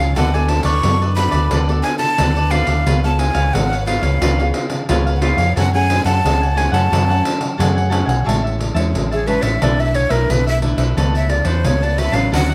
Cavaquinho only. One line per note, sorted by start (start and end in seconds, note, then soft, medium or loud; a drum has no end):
0.00 0.15 G#4 soft
0.00 0.14 C#5 soft
0.00 0.14 F5 soft
0.16 0.32 D4 medium
0.16 0.32 A4 medium
0.16 0.33 B4 medium
0.16 0.33 D5 medium
0.34 0.48 A4 soft
0.34 0.48 B4 soft
0.34 0.49 D5 medium
0.49 muted cavaquinho stroke soft
0.65 0.99 A4 medium
0.65 0.99 B4 medium
0.65 0.98 D5 medium
1.01 1.16 A4 soft
1.01 1.17 B4 soft
1.01 1.17 D5 soft
1.16 1.32 D4 soft
1.16 1.32 A4 soft
1.16 1.32 B4 medium
1.16 1.30 D5 medium
1.31 1.50 A4 medium
1.31 1.49 B4 medium
1.31 1.48 D5 medium
1.51 1.67 D4 medium
1.51 1.67 A4 medium
1.51 1.68 B4 medium
1.51 1.68 D5 medium
1.69 1.83 A4 soft
1.69 1.84 B4 soft
1.69 1.84 D5 soft
1.84 muted cavaquinho stroke soft
2.19 2.34 D4 medium
2.19 2.35 A4 medium
2.19 2.35 B4 medium
2.19 2.35 D5 medium
2.37 2.51 A4 soft
2.37 2.52 B4 medium
2.37 2.52 D5 medium
2.52 2.68 D4 medium
2.52 2.67 A4 medium
2.52 2.67 B4 medium
2.52 2.66 D5 medium
2.67 2.85 A4 soft
2.67 2.84 B4 soft
2.67 2.84 D5 soft
2.86 3.02 F4 medium
2.86 3.02 B4 medium
2.86 3.02 C#5 medium
2.86 3.03 F5 medium
3.04 3.17 B4 soft
3.04 3.18 C#5 soft
3.04 3.18 F5 soft
3.19 muted cavaquinho stroke soft
3.35 3.69 B4 medium
3.35 3.69 C#5 medium
3.35 3.68 F5 medium
3.72 3.86 B4 soft
3.72 3.86 C#5 soft
3.72 3.87 F5 medium
3.86 4.02 F4 medium
3.86 4.03 B4 medium
3.86 4.01 C#5 medium
3.86 4.00 F5 medium
4.02 4.20 B4 medium
4.02 4.19 C#5 medium
4.02 4.19 F5 medium
4.21 4.37 F4 medium
4.21 4.37 B4 medium
4.21 4.38 C#5 medium
4.21 4.38 F5 medium
4.39 4.53 B4 soft
4.39 4.54 C#5 soft
4.39 4.54 F5 soft
4.55 muted cavaquinho stroke soft
4.89 5.04 F4 medium
4.89 5.05 B4 medium
4.89 5.05 C#5 medium
4.89 5.05 F5 medium
5.06 5.21 B4 soft
5.06 5.22 C#5 soft
5.06 5.22 F5 medium
5.22 5.38 F4 medium
5.22 5.38 B4 medium
5.22 5.37 C#5 medium
5.22 5.36 F5 medium
5.37 5.55 B4 soft
5.37 5.54 C#5 soft
5.37 5.54 F5 soft
5.56 5.72 A4 medium
5.56 5.72 C#5 medium
5.56 5.73 F#5 medium
5.56 5.73 G#5 medium
5.74 5.88 C#5 soft
5.74 5.88 F#5 soft
5.74 5.88 G#5 soft
5.88 muted cavaquinho stroke soft
6.05 6.39 C#5 medium
6.05 6.39 F#5 medium
6.41 6.55 C#5 soft
6.41 6.55 F#5 soft
6.41 6.56 G#5 soft
6.55 6.72 A4 medium
6.55 6.72 C#5 medium
6.55 6.71 F#5 medium
6.55 6.69 G#5 medium
6.71 6.89 C#5 medium
6.71 6.89 F#5 medium
6.71 6.88 G#5 medium
6.90 7.06 A4 medium
6.90 7.07 C#5 medium
6.90 7.07 F#5 medium
6.90 7.07 G#5 medium
7.08 7.22 C#5 soft
7.08 7.22 F#5 soft
7.08 7.23 G#5 soft
7.23 muted cavaquinho stroke soft
7.58 7.74 A4 medium
7.58 7.74 C#5 medium
7.58 7.75 F#5 medium
7.58 7.74 G#5 medium
7.75 7.90 C#5 soft
7.75 7.90 F#5 soft
7.75 7.91 G#5 soft
7.90 8.07 A4 medium
7.90 8.07 C#5 medium
7.90 8.06 F#5 medium
7.90 8.04 G#5 medium
8.06 8.24 C#5 soft
8.06 8.24 F#5 soft
8.06 8.23 G#5 soft
8.24 8.41 G#4 medium
8.24 8.42 C#5 medium
8.24 8.42 E5 medium
8.24 8.42 A5 medium
8.43 8.58 C#5 soft
8.43 8.58 E5 soft
8.43 8.58 A5 soft
8.59 muted cavaquinho stroke soft
8.74 9.09 C#5 medium
8.74 9.09 E5 medium
8.74 9.08 A5 medium
9.11 9.26 C#5 soft
9.11 9.26 E5 soft
9.11 9.27 A5 soft
9.26 9.42 G#4 soft
9.26 9.42 C#5 medium
9.26 9.41 E5 medium
9.26 9.40 A5 medium
9.41 9.60 C#5 medium
9.41 9.59 E5 medium
9.41 9.59 A5 medium
9.61 9.77 D4 medium
9.61 9.77 A4 medium
9.61 9.78 B4 medium
9.61 9.78 E5 medium
9.79 9.93 A4 soft
9.79 9.94 B4 soft
9.79 9.94 E5 soft
9.94 muted cavaquinho stroke soft
10.09 10.44 A4 medium
10.09 10.44 B4 medium
10.09 10.43 E5 medium
10.47 10.61 A4 soft
10.47 10.62 B4 soft
10.47 10.62 E5 medium
10.62 10.78 D4 soft
10.62 10.78 A4 soft
10.62 10.77 B4 medium
10.62 10.76 E5 medium
10.77 10.95 A4 medium
10.77 10.95 B4 medium
10.77 10.94 E5 medium
10.97 11.12 A4 medium
10.97 11.13 B4 medium
10.97 11.13 C#5 medium
10.97 11.13 A5 medium
11.14 11.30 B4 soft
11.14 11.29 C#5 soft
11.14 11.30 A5 soft
11.30 muted cavaquinho stroke soft
11.45 11.79 B4 medium
11.45 11.80 C#5 medium
11.45 11.79 A5 medium
11.82 11.97 B4 soft
11.82 11.97 C#5 soft
11.82 11.97 A5 medium
11.97 12.13 A4 medium
11.97 12.12 B4 medium
11.97 12.13 C#5 medium
11.97 12.11 A5 medium
12.12 12.30 B4 medium
12.12 12.30 C#5 medium
12.12 12.29 A5 medium
12.32 12.48 D4 medium
12.32 12.48 A4 medium
12.32 12.48 C#5 medium
12.32 12.48 F#5 medium
12.50 12.54 C#5 soft
12.50 12.54 F#5 soft